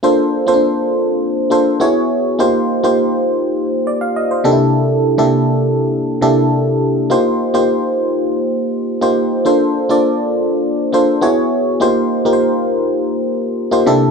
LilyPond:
\new Staff \with { instrumentName = "FM electric piano" } { \time 4/4 \key bes \major \tempo 4 = 102 << { r1 | r2 r8 d''16 f''16 ees''16 c''8 r16 | r1 | r1 |
r1 | r1 | } \\ { <bes d' f' a' c''>8 r16 <bes c' d' f' a' c''>4~ <bes c' d' f' a' c''>16 r8 <bes d' f' a' c''>8 <b e' fis' gis' cis''>8. r16 | <bes ees' f' g' c''>8 r16 <bes ees' f' g' c''>4. r4 r16 <c bes d' ees' e' g' a'>8~ | <c bes d' ees' e' g' a'>8 r16 <c bes d' e' g' a'>4~ <c bes d' e' g' a'>16 r8 <c bes d' e' g' a'>4~ <c bes d' e' g' a'>16 r16 | <bes ees' f' g' c''>8 r16 <bes ees' f' g' c''>4. r4 <bes ees' f' g' c''>8 r16 |
<bes d' f' a' c''>8 r16 <bes d' f' a' d''>4~ <bes d' f' a' d''>16 r8 <bes d' f' a' c''>8 <b e' fis' gis' cis''>8. r16 | <bes ees' f' g' c''>8 r16 <bes ees' f' g' bes' c''>4. r4 <bes ees' f' g' c''>16 <c bes d' e' g' a'>8 | } >> }